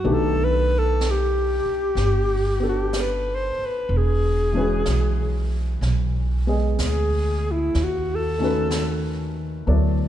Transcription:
0.00 0.14 F#4 medium
0.04 1.61 B1 medium
0.04 3.90 D#3 medium
0.04 3.90 A3 soft
0.04 2.58 B3 soft
0.04 2.60 D4 soft
0.04 3.90 G4 medium
0.04 brush sweep soft
0.13 0.46 A4 medium
0.44 0.80 B4 medium
0.78 1.12 A4 medium
1.01 brush sweep soft
1.01 snare soft
1.01 hi-hat pedal soft
1.10 2.66 G4 medium
1.65 muted upright bass stroke soft
1.95 3.53 G1 medium
1.95 brush sweep soft
1.95 snare soft
2.60 3.89 B3 soft
2.60 3.90 D4 soft
2.60 3.91 A4 soft
2.69 3.02 G4 medium
2.93 brush sweep soft
2.93 snare soft
2.93 hi-hat pedal medium
3.00 3.36 B4 medium
3.35 3.67 C5 medium
3.59 muted upright bass stroke soft
3.65 3.98 B4 medium
3.89 4.82 E1 medium
3.89 brush sweep soft
3.97 5.54 G#4 medium
4.53 7.74 E3 soft
4.53 6.46 G#3 soft
4.53 7.75 C#4 soft
4.53 7.76 F#4 soft
4.57 7.76 B4 medium
4.86 5.78 B1 medium
4.86 brush sweep soft
4.86 snare soft
4.86 hi-hat pedal soft
5.81 6.74 B1 medium
5.81 brush sweep soft
5.81 snare soft
6.47 7.75 G#3 soft
6.47 7.75 B3 soft
6.47 7.76 G#4 soft
6.47 7.76 D#5 soft
6.79 7.71 D2 medium
6.79 brush sweep soft
6.79 snare soft
6.79 hi-hat pedal medium
6.85 7.53 G#4 medium
7.51 7.85 E4 medium
7.74 9.63 D#2 medium
7.74 brush sweep soft
7.74 snare soft
7.83 8.17 F#4 medium
8.15 9.07 A4 medium
8.38 9.67 D#3 soft
8.38 9.68 A3 soft
8.38 9.68 C#4 soft
8.43 9.69 F#4 soft
8.43 9.70 B4 medium
8.71 brush sweep soft
8.71 snare soft
8.71 hi-hat pedal medium
9.67 10.08 D2 medium
9.67 10.08 F#3 soft
9.67 10.08 B3 soft
9.67 10.08 E4 soft
9.67 10.08 A4 soft
9.67 10.08 D5 soft
9.67 brush sweep soft

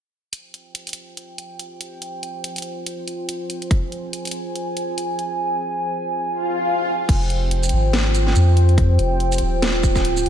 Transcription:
0.33 7.05 F4 medium
0.33 7.05 C5 medium
0.33 3.68 G5 medium
0.33 closed hi-hat medium
0.54 closed hi-hat soft
0.75 closed hi-hat medium
0.87 closed hi-hat soft
0.89 closed hi-hat medium
0.93 closed hi-hat medium
1.17 closed hi-hat medium
1.38 closed hi-hat medium
1.59 closed hi-hat medium
1.81 closed hi-hat medium
2.02 closed hi-hat medium
2.23 closed hi-hat soft
2.44 closed hi-hat medium
2.56 closed hi-hat soft
2.58 closed hi-hat medium
2.62 closed hi-hat medium
2.86 closed hi-hat medium
3.08 closed hi-hat medium
3.29 closed hi-hat medium
3.50 closed hi-hat soft
3.62 closed hi-hat soft
3.71 7.06 G#5 medium
3.71 kick loud
3.71 closed hi-hat medium
3.92 closed hi-hat soft
4.13 closed hi-hat medium
4.25 closed hi-hat soft
4.27 closed hi-hat medium
4.31 closed hi-hat medium
4.56 closed hi-hat medium
4.77 closed hi-hat soft
4.98 closed hi-hat medium
5.19 closed hi-hat soft
6.24 swell medium
7.09 7.71 F1 medium
7.09 10.29 F4 medium
7.09 10.29 C5 medium
7.09 10.29 G5 medium
7.09 kick loud
7.09 closed hi-hat medium
7.09 crash medium
7.30 closed hi-hat medium
7.51 closed hi-hat medium
7.63 closed hi-hat medium
7.63 shaker medium
7.65 closed hi-hat medium
7.69 8.34 G#1 loud
7.69 closed hi-hat medium
7.93 snare loud
7.93 closed hi-hat medium
8.15 closed hi-hat medium
8.15 shaker medium
8.27 snare soft
8.36 8.97 F2 medium
8.36 closed hi-hat medium
8.36 shaker medium
8.57 closed hi-hat medium
8.69 closed hi-hat soft
8.78 kick loud
8.78 closed hi-hat medium
8.99 9.40 F1 loud
8.99 closed hi-hat medium
9.20 closed hi-hat medium
9.32 closed hi-hat medium
9.32 shaker medium
9.34 closed hi-hat medium
9.38 10.00 D#1 medium
9.38 closed hi-hat medium
9.62 snare loud
9.62 closed hi-hat medium
9.83 kick loud
9.83 closed hi-hat medium
9.83 shaker medium
9.96 kick medium
9.96 snare soft
9.96 shaker soft
10.00 10.24 D1 medium
10.05 closed hi-hat medium
10.17 shaker medium
10.26 10.29 F1 loud
10.26 closed hi-hat soft

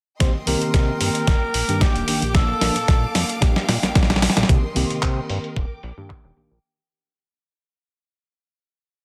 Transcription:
0.20 0.30 C2 loud
0.20 0.34 D#3 medium
0.20 0.34 A#3 medium
0.20 4.45 A#3 medium
0.20 0.34 C4 medium
0.20 0.34 G4 medium
0.20 0.33 C5 loud
0.20 1.26 D#5 medium
0.20 2.32 G5 medium
0.20 1.26 C6 medium
0.20 kick loud
0.20 snare soft
0.20 closed hi-hat medium
0.46 0.56 C2 medium
0.46 1.25 D#3 medium
0.46 1.26 A#3 medium
0.46 1.26 C4 medium
0.46 1.26 G4 loud
0.46 0.97 A#4 loud
0.46 open hi-hat loud
0.62 0.72 C3 soft
0.62 closed hi-hat medium
0.74 0.92 C3 medium
0.74 kick loud
0.74 snare soft
0.74 closed hi-hat medium
1.01 1.10 G2 medium
1.01 1.82 A#4 loud
1.01 open hi-hat loud
1.15 closed hi-hat medium
1.27 1.37 D#1 medium
1.27 4.46 D6 medium
1.27 kick loud
1.27 snare medium
1.27 closed hi-hat medium
1.54 1.63 A#1 medium
1.54 open hi-hat loud
1.68 1.85 G2 loud
1.68 2.05 D#3 medium
1.68 2.05 A#3 medium
1.68 2.05 D4 medium
1.68 2.05 G4 medium
1.68 closed hi-hat medium
1.81 2.36 G4 medium
1.81 kick loud
1.81 snare medium
1.81 closed hi-hat medium
1.96 2.03 D#1 medium
1.96 closed hi-hat soft
2.07 2.20 A#1 soft
2.07 2.21 D#3 medium
2.07 2.21 A#3 medium
2.07 2.22 D4 medium
2.07 2.22 G4 medium
2.07 open hi-hat loud
2.22 2.54 A#1 medium
2.22 closed hi-hat medium
2.34 2.48 F3 medium
2.34 2.48 A#3 medium
2.34 2.48 D4 medium
2.34 2.48 A4 loud
2.34 3.42 A4 loud
2.34 4.47 F5 medium
2.34 3.41 A5 medium
2.34 kick loud
2.34 snare medium
2.34 closed hi-hat medium
2.61 2.71 A#1 medium
2.61 2.75 F3 medium
2.61 2.75 A#3 medium
2.61 2.75 D4 medium
2.61 2.75 A#4 medium
2.61 snare medium
2.61 open hi-hat loud
2.76 2.86 A#2 soft
2.76 closed hi-hat medium
2.88 3.06 A#2 medium
2.88 kick loud
2.88 snare medium
2.88 closed hi-hat medium
3.15 3.24 F2 medium
3.15 snare medium
3.15 open hi-hat loud
3.29 closed hi-hat medium
3.41 3.51 A#1 medium
3.41 3.62 F3 medium
3.41 3.62 A#3 medium
3.41 3.62 D4 medium
3.41 3.63 G4 loud
3.41 4.48 G5 medium
3.41 kick loud
3.41 snare medium
3.41 closed hi-hat medium
3.56 snare medium
3.69 3.78 A#2 loud
3.69 snare medium
3.69 open hi-hat loud
3.83 3.93 A#1 soft
3.83 snare medium
3.83 closed hi-hat medium
3.95 4.28 A#1 loud
3.95 kick loud
3.95 snare loud
3.95 closed hi-hat medium
4.03 snare medium
4.10 snare medium
4.10 closed hi-hat soft
4.16 snare medium
4.22 snare loud
4.22 open hi-hat loud
4.30 snare medium
4.37 4.45 A#1 loud
4.37 snare loud
4.37 closed hi-hat medium
4.43 snare loud
4.48 4.58 C2 loud
4.48 4.62 D#3 medium
4.48 4.62 A#3 medium
4.48 4.63 C4 medium
4.48 4.63 G4 loud
4.48 6.61 A#4 medium
4.48 5.55 D#5 medium
4.48 5.55 G5 medium
4.48 5.55 C6 medium
4.48 kick loud
4.48 closed hi-hat medium
4.75 4.85 C2 medium
4.75 5.54 D#3 loud
4.75 5.54 A#3 medium
4.75 5.55 C4 medium
4.75 5.55 G4 loud
4.75 open hi-hat loud
4.90 5.00 C3 soft
4.90 closed hi-hat medium
5.03 5.20 C3 medium
5.03 kick loud
5.03 clap loud
5.03 closed hi-hat medium
5.30 5.39 G2 medium
5.30 open hi-hat loud
5.44 closed hi-hat medium
5.56 5.65 D#1 medium
5.56 6.62 G5 medium
5.56 6.62 D6 medium
5.56 kick loud
5.56 closed hi-hat medium
5.83 5.92 A#1 medium
5.83 open hi-hat loud
5.97 6.14 G2 medium
5.97 6.33 D#3 medium
5.97 6.34 A#3 medium
5.97 6.34 D4 medium
5.97 6.34 G4 medium
5.97 closed hi-hat soft
6.10 kick loud
6.10 clap loud
6.10 closed hi-hat medium
6.24 6.32 D#1 medium
6.24 clap soft
6.24 closed hi-hat soft
6.36 6.48 A#1 soft
6.36 6.50 D#3 medium
6.36 6.50 A#3 medium
6.36 6.50 D4 medium
6.36 6.50 G4 medium
6.36 open hi-hat loud
6.51 6.59 A#1 medium

